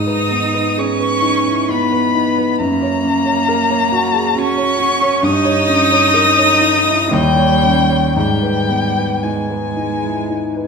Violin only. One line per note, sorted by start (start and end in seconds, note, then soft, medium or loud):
0.00 0.80 D#6 loud
0.78 1.72 C#6 loud
1.71 2.60 B5 loud
2.60 4.39 A#5 loud
4.38 5.25 C#6 loud
5.24 7.14 D#6 loud
7.13 8.16 G5 loud
8.18 9.24 G5 loud
9.23 10.67 G#5 medium